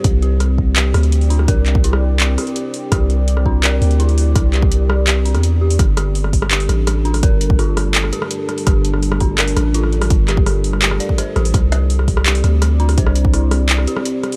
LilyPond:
<<
  \new Staff \with { instrumentName = "Ambient pad" } { \time 4/4 \key c \mixolydian \tempo 4 = 167 <c' g' d''>1~ | <c' g' d''>1~ | <c' g' d''>1~ | <c' g' d''>1 |
<g d' a'>1~ | <g d' a'>1~ | <g d' a'>1~ | <g d' a'>1 |
<c' g' d''>1~ | <c' g' d''>1 | }
  \new Staff \with { instrumentName = "Synth bell" } { \time 4/4 \key c \mixolydian r8 g'4. g'4. d'8 | bes'8 r8 e'4. g'4. | g'4. d'8 bes'8 r8 e'4~ | e'8 g'4. g'8 d'8 r8 g'8 |
r8 g'4. g'4. d'8 | bes'8 r8 f'4. g'4. | g'4. d'8 bes'8 r8 f'4~ | f'8 g'4. g'8 d''8 c''8 g'8 |
r8 g'4. g'4. d'8 | c''8 r8 e'4. g'4. | }
  \new Staff \with { instrumentName = "808-style bass" } { \clef bass \time 4/4 \key c \mixolydian c,2~ c,8 d,4. | c,2~ c,8 r4. | c,2~ c,8 d,4. | c,2~ c,8. e,4~ e,16 |
g,,2~ g,,8 a,,4. | g,,2~ g,,8 r4. | g,,2~ g,,8 a,,4. | g,,2~ g,,8 r4 a,,8 |
c,2~ c,8 d,4. | c,2~ c,8 r4. | }
  \new DrumStaff \with { instrumentName = "Drums" } \drummode { \time 4/4 <hh bd>8 hh8 <hh ss>8 bd8 <hc hh>8 <hho ss>16 hh16 hh16 hho16 hho16 ss16 | <hh bd>8 <hc hh>16 bd16 hh16 ss8. <hc hh>8 <hho ss>16 hh16 hh8 hho8 | <hh bd ss>8 hh8 hh16 ss16 bd8 <hc hh>8 hho16 hh16 hh16 hho16 hho8 | <hh bd ss>8 <hc hh>16 bd16 hh8 ss8 <hc hh>8 hho16 <hh ss>16 hh8. <hh hho>16 |
<hh bd ss>8 <hh ss>8 hho16 ss16 <hho bd>16 ss16 <hc hh>16 hho16 <hh ss>8 <hh ss>8 hh16 <hho ss>16 | <hh bd>8 hh16 bd16 <hho ss>8 <hho ss>8 <hc hh>16 ss16 hh16 ss16 hh8 <hh ss>16 hho16 | <hh bd ss>8 hh16 ss16 hho16 ss16 <hho bd>8 <hc hh ss>16 hho16 <hh ss>8 hh16 ss16 hh16 <hho ss>16 | <hh bd>8 <hc hh ss>16 bd16 <hho ss>8 hho16 ss16 <hc hh>16 ss16 hh16 bd16 <hh ss>8 <hh ss>16 hho16 |
<hh bd ss>8 <hh ss>8 hho16 ss16 <hho bd>16 ss16 <hc hh>16 hho16 <hh ss>8 <hh ss>8 hh16 <hho ss>16 | <hh bd>16 ss16 hh16 bd16 <hho ss>8 <hho ss>8 <hc hh>16 ss16 hh16 ss16 hh8 <hh ss>16 hho16 | }
>>